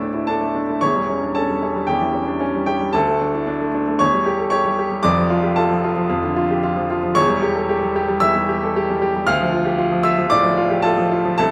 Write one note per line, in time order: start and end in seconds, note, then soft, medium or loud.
0.00 0.83 D2 medium
0.00 0.83 A2 medium
0.00 0.41 A3 soft
0.00 0.28 D4 medium
0.00 0.14 E4 soft
0.00 0.29 A4 medium
0.00 0.24 D5 medium
0.00 0.83 E5 medium
0.00 0.27 A5 medium
0.00 0.27 D6 medium
0.00 0.83 E6 medium
0.14 0.27 E4 soft
0.27 0.49 D4 medium
0.27 0.78 A4 medium
0.27 0.81 A5 medium
0.41 0.62 A3 medium
0.55 0.76 D4 medium
0.69 0.82 A3 soft
0.81 1.85 E1 medium
0.81 1.85 E2 medium
0.81 1.31 C#5 medium
0.81 1.34 C#6 medium
0.95 1.16 G3 soft
1.09 1.30 C#4 medium
1.23 1.35 D4 soft
1.35 1.56 C#4 medium
1.35 1.84 A4 medium
1.35 1.88 A5 medium
1.49 1.70 G3 medium
1.63 1.83 C#4 medium
1.76 1.96 G3 medium
1.87 2.92 E2 medium
1.87 2.64 G4 medium
1.87 2.65 G5 medium
2.01 2.22 E3 medium
2.14 2.35 C#4 medium
2.27 2.41 D4 medium
2.40 2.62 C#4 medium
2.55 2.76 G3 soft
2.66 2.89 C#4 medium
2.66 2.92 G4 medium
2.66 2.94 G5 medium
2.81 2.94 G3 soft
2.93 3.97 D2 medium
2.93 3.96 A4 medium
2.93 3.99 A5 medium
3.08 3.29 A3 medium
3.21 3.42 D4 medium
3.34 3.47 E4 soft
3.47 3.68 D4 medium
3.61 3.82 A3 medium
3.74 3.95 D4 medium
3.88 4.01 A3 medium
3.99 5.02 E2 medium
3.99 4.49 C#5 medium
3.99 4.49 C#6 medium
4.14 4.35 G3 medium
4.26 4.47 G4 medium
4.39 4.52 A4 medium
4.50 4.74 G4 medium
4.50 5.01 C#5 medium
4.50 5.04 C#6 medium
4.65 4.87 G3 medium
4.79 5.00 G4 medium
4.91 5.05 G3 medium
5.03 6.07 F1 medium
5.03 6.07 F2 medium
5.03 5.54 D5 medium
5.03 5.56 D6 loud
5.18 5.39 F3 medium
5.30 5.52 F4 medium
5.43 5.57 G4 medium
5.56 5.79 F4 medium
5.56 6.85 A4 medium
5.56 6.88 A5 medium
5.71 5.92 F3 medium
5.84 6.05 F4 medium
5.96 6.18 F3 medium
6.10 7.12 F2 medium
6.23 6.45 D3 medium
6.36 6.58 F4 medium
6.51 6.63 G4 medium
6.63 6.84 F4 medium
6.76 6.97 F3 medium
6.90 7.11 F4 medium
7.03 7.16 F3 medium
7.15 8.18 E1 medium
7.15 8.18 E2 medium
7.15 8.17 C#5 medium
7.15 8.21 C#6 loud
7.28 7.49 G3 medium
7.42 7.63 G4 medium
7.55 7.68 A4 medium
7.69 7.90 G4 medium
7.83 8.03 G3 medium
7.96 8.16 G4 medium
8.08 8.29 G3 medium
8.20 8.42 E3 medium
8.20 9.22 E5 medium
8.20 9.26 E6 loud
8.36 8.56 G3 medium
8.49 8.69 G4 medium
8.63 8.75 A4 medium
8.76 8.96 G4 medium
8.90 9.09 G3 medium
9.02 9.22 G4 medium
9.16 9.27 G3 medium
9.27 10.29 D2 medium
9.27 10.01 F5 medium
9.27 10.05 F6 loud
9.40 9.61 F3 medium
9.52 9.73 F4 medium
9.65 9.78 G4 medium
9.78 9.99 F4 medium
9.92 10.13 F3 medium
10.03 10.26 F4 medium
10.03 10.29 E5 medium
10.03 10.31 E6 loud
10.18 10.39 F3 medium
10.30 10.53 A2 medium
10.30 10.81 D5 medium
10.30 10.84 D6 loud
10.44 10.66 F3 medium
10.57 10.79 F4 medium
10.70 10.84 G4 medium
10.82 11.06 F4 medium
10.82 11.35 A4 medium
10.82 11.36 A5 loud
10.98 11.20 F3 medium
11.11 11.33 F4 medium
11.25 11.39 F3 medium
11.38 11.51 C2 medium
11.38 11.51 A4 medium
11.38 11.51 A5 loud